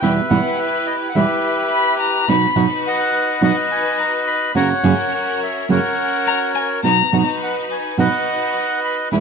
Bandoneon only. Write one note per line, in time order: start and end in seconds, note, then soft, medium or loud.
0.00 1.12 B4 medium
0.00 0.56 E5 medium
0.00 0.13 G5 loud
0.30 0.59 F#5 medium
0.58 0.87 E5 medium
0.86 0.96 D#5 medium
1.09 1.15 F#5 medium
1.15 2.25 G4 medium
1.15 2.25 B4 medium
1.15 1.96 E5 medium
2.87 3.41 B4 medium
2.87 3.41 D#5 medium
2.87 3.42 F#5 medium
3.43 4.52 B4 medium
3.43 4.52 D#5 medium
3.43 3.56 F#5 loud
3.71 3.97 G#5 medium
4.00 4.12 A#5 medium
4.27 4.53 B5 loud
4.56 5.66 C#5 medium
4.56 5.13 F#5 medium
4.56 4.69 A#5 loud
4.85 4.98 G#5 medium
5.14 5.40 F#5 medium
5.43 5.68 E5 medium
5.71 6.81 A#4 medium
5.71 6.81 C#5 medium
5.71 6.52 F#5 medium
7.43 7.56 F#5 medium
7.71 7.97 G#5 medium
7.99 9.09 B4 medium
7.99 9.09 D#5 medium
7.99 8.80 F#5 loud
8.84 8.97 B5 medium